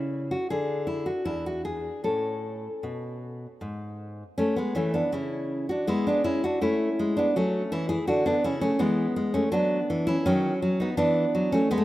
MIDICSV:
0, 0, Header, 1, 2, 480
1, 0, Start_track
1, 0, Key_signature, 3, "major"
1, 0, Tempo, 745342
1, 801, Tempo, 787402
1, 1281, Time_signature, 3, 2, 24, 8
1, 2241, Tempo, 755668
1, 3681, Tempo, 730816
1, 7603, End_track
2, 0, Start_track
2, 0, Title_t, "Nylon-string guitar"
2, 0, Program_c, 0, 24
2, 0, Note_on_c, 0, 49, 70
2, 0, Note_on_c, 0, 64, 85
2, 185, Note_off_c, 0, 64, 0
2, 201, Note_on_c, 0, 66, 86
2, 223, Note_off_c, 0, 49, 0
2, 318, Note_off_c, 0, 66, 0
2, 324, Note_on_c, 0, 68, 86
2, 328, Note_on_c, 0, 50, 63
2, 328, Note_on_c, 0, 62, 45
2, 550, Note_off_c, 0, 68, 0
2, 559, Note_on_c, 0, 64, 85
2, 679, Note_off_c, 0, 64, 0
2, 682, Note_on_c, 0, 66, 78
2, 711, Note_off_c, 0, 50, 0
2, 780, Note_off_c, 0, 62, 0
2, 803, Note_off_c, 0, 66, 0
2, 807, Note_on_c, 0, 40, 62
2, 808, Note_on_c, 0, 64, 93
2, 809, Note_on_c, 0, 62, 47
2, 922, Note_off_c, 0, 64, 0
2, 935, Note_on_c, 0, 66, 82
2, 1045, Note_off_c, 0, 66, 0
2, 1048, Note_on_c, 0, 68, 82
2, 1189, Note_off_c, 0, 40, 0
2, 1260, Note_off_c, 0, 62, 0
2, 1276, Note_off_c, 0, 68, 0
2, 1285, Note_on_c, 0, 45, 60
2, 1288, Note_on_c, 0, 61, 43
2, 1288, Note_on_c, 0, 69, 81
2, 1669, Note_off_c, 0, 45, 0
2, 1769, Note_on_c, 0, 47, 57
2, 2150, Note_off_c, 0, 47, 0
2, 2244, Note_on_c, 0, 44, 59
2, 2465, Note_off_c, 0, 69, 0
2, 2633, Note_off_c, 0, 44, 0
2, 2707, Note_off_c, 0, 61, 0
2, 2730, Note_on_c, 0, 61, 98
2, 2737, Note_on_c, 0, 57, 77
2, 2844, Note_off_c, 0, 57, 0
2, 2849, Note_off_c, 0, 61, 0
2, 2850, Note_on_c, 0, 59, 89
2, 2861, Note_on_c, 0, 56, 65
2, 2966, Note_off_c, 0, 56, 0
2, 2967, Note_on_c, 0, 52, 76
2, 2968, Note_off_c, 0, 59, 0
2, 2970, Note_on_c, 0, 61, 91
2, 2976, Note_on_c, 0, 57, 74
2, 3083, Note_off_c, 0, 57, 0
2, 3084, Note_off_c, 0, 61, 0
2, 3087, Note_on_c, 0, 62, 88
2, 3095, Note_on_c, 0, 59, 69
2, 3139, Note_off_c, 0, 52, 0
2, 3202, Note_off_c, 0, 59, 0
2, 3205, Note_on_c, 0, 49, 73
2, 3206, Note_off_c, 0, 62, 0
2, 3207, Note_on_c, 0, 64, 94
2, 3215, Note_on_c, 0, 61, 70
2, 3542, Note_off_c, 0, 61, 0
2, 3548, Note_off_c, 0, 49, 0
2, 3548, Note_off_c, 0, 64, 0
2, 3566, Note_on_c, 0, 66, 87
2, 3577, Note_on_c, 0, 62, 70
2, 3680, Note_off_c, 0, 62, 0
2, 3682, Note_on_c, 0, 56, 79
2, 3683, Note_off_c, 0, 66, 0
2, 3685, Note_on_c, 0, 64, 106
2, 3692, Note_on_c, 0, 59, 75
2, 3800, Note_off_c, 0, 59, 0
2, 3804, Note_off_c, 0, 64, 0
2, 3809, Note_on_c, 0, 62, 93
2, 3821, Note_on_c, 0, 59, 70
2, 3924, Note_on_c, 0, 64, 97
2, 3926, Note_off_c, 0, 59, 0
2, 3927, Note_off_c, 0, 62, 0
2, 3930, Note_on_c, 0, 61, 71
2, 4032, Note_off_c, 0, 56, 0
2, 4040, Note_off_c, 0, 61, 0
2, 4046, Note_off_c, 0, 64, 0
2, 4052, Note_on_c, 0, 66, 95
2, 4060, Note_on_c, 0, 62, 75
2, 4166, Note_off_c, 0, 62, 0
2, 4168, Note_off_c, 0, 66, 0
2, 4168, Note_on_c, 0, 57, 75
2, 4171, Note_on_c, 0, 64, 99
2, 4177, Note_on_c, 0, 61, 75
2, 4343, Note_off_c, 0, 57, 0
2, 4417, Note_on_c, 0, 56, 79
2, 4511, Note_off_c, 0, 61, 0
2, 4518, Note_off_c, 0, 64, 0
2, 4531, Note_on_c, 0, 62, 91
2, 4543, Note_on_c, 0, 59, 77
2, 4589, Note_off_c, 0, 56, 0
2, 4650, Note_off_c, 0, 59, 0
2, 4652, Note_off_c, 0, 62, 0
2, 4658, Note_on_c, 0, 54, 73
2, 4662, Note_on_c, 0, 61, 101
2, 4667, Note_on_c, 0, 57, 70
2, 4829, Note_off_c, 0, 54, 0
2, 4882, Note_off_c, 0, 57, 0
2, 4885, Note_off_c, 0, 61, 0
2, 4893, Note_on_c, 0, 64, 101
2, 4896, Note_on_c, 0, 52, 78
2, 4899, Note_on_c, 0, 61, 78
2, 5002, Note_off_c, 0, 64, 0
2, 5005, Note_on_c, 0, 68, 102
2, 5006, Note_off_c, 0, 61, 0
2, 5011, Note_on_c, 0, 64, 80
2, 5065, Note_off_c, 0, 52, 0
2, 5121, Note_off_c, 0, 64, 0
2, 5125, Note_off_c, 0, 68, 0
2, 5127, Note_on_c, 0, 66, 94
2, 5130, Note_on_c, 0, 50, 79
2, 5134, Note_on_c, 0, 62, 76
2, 5239, Note_off_c, 0, 62, 0
2, 5247, Note_off_c, 0, 66, 0
2, 5247, Note_on_c, 0, 62, 101
2, 5256, Note_on_c, 0, 59, 76
2, 5301, Note_off_c, 0, 50, 0
2, 5363, Note_off_c, 0, 59, 0
2, 5366, Note_off_c, 0, 62, 0
2, 5369, Note_on_c, 0, 64, 100
2, 5374, Note_on_c, 0, 49, 78
2, 5377, Note_on_c, 0, 61, 78
2, 5473, Note_off_c, 0, 61, 0
2, 5481, Note_on_c, 0, 61, 106
2, 5487, Note_off_c, 0, 64, 0
2, 5493, Note_on_c, 0, 57, 81
2, 5543, Note_off_c, 0, 49, 0
2, 5597, Note_off_c, 0, 57, 0
2, 5597, Note_on_c, 0, 52, 85
2, 5600, Note_on_c, 0, 59, 106
2, 5603, Note_off_c, 0, 61, 0
2, 5604, Note_on_c, 0, 56, 82
2, 5772, Note_off_c, 0, 52, 0
2, 5834, Note_off_c, 0, 56, 0
2, 5842, Note_on_c, 0, 56, 81
2, 5946, Note_off_c, 0, 59, 0
2, 5957, Note_on_c, 0, 61, 97
2, 5964, Note_on_c, 0, 57, 82
2, 6015, Note_off_c, 0, 56, 0
2, 6073, Note_off_c, 0, 61, 0
2, 6074, Note_on_c, 0, 54, 85
2, 6075, Note_off_c, 0, 57, 0
2, 6076, Note_on_c, 0, 62, 108
2, 6087, Note_on_c, 0, 59, 80
2, 6250, Note_off_c, 0, 54, 0
2, 6325, Note_on_c, 0, 52, 82
2, 6420, Note_off_c, 0, 59, 0
2, 6425, Note_off_c, 0, 62, 0
2, 6436, Note_on_c, 0, 64, 108
2, 6447, Note_on_c, 0, 61, 82
2, 6497, Note_off_c, 0, 52, 0
2, 6552, Note_off_c, 0, 61, 0
2, 6559, Note_off_c, 0, 64, 0
2, 6560, Note_on_c, 0, 61, 122
2, 6561, Note_on_c, 0, 51, 84
2, 6567, Note_on_c, 0, 54, 97
2, 6734, Note_off_c, 0, 51, 0
2, 6794, Note_off_c, 0, 54, 0
2, 6802, Note_on_c, 0, 54, 85
2, 6905, Note_off_c, 0, 61, 0
2, 6917, Note_on_c, 0, 63, 92
2, 6927, Note_on_c, 0, 59, 76
2, 6974, Note_off_c, 0, 54, 0
2, 7028, Note_off_c, 0, 63, 0
2, 7030, Note_off_c, 0, 59, 0
2, 7030, Note_on_c, 0, 52, 93
2, 7031, Note_on_c, 0, 62, 113
2, 7038, Note_on_c, 0, 59, 95
2, 7208, Note_off_c, 0, 52, 0
2, 7276, Note_on_c, 0, 54, 86
2, 7376, Note_off_c, 0, 59, 0
2, 7382, Note_off_c, 0, 62, 0
2, 7392, Note_on_c, 0, 61, 110
2, 7404, Note_on_c, 0, 57, 85
2, 7452, Note_off_c, 0, 54, 0
2, 7513, Note_off_c, 0, 61, 0
2, 7513, Note_on_c, 0, 56, 93
2, 7515, Note_off_c, 0, 57, 0
2, 7515, Note_on_c, 0, 59, 114
2, 7559, Note_on_c, 0, 57, 91
2, 7564, Note_off_c, 0, 59, 0
2, 7600, Note_off_c, 0, 56, 0
2, 7603, Note_off_c, 0, 57, 0
2, 7603, End_track
0, 0, End_of_file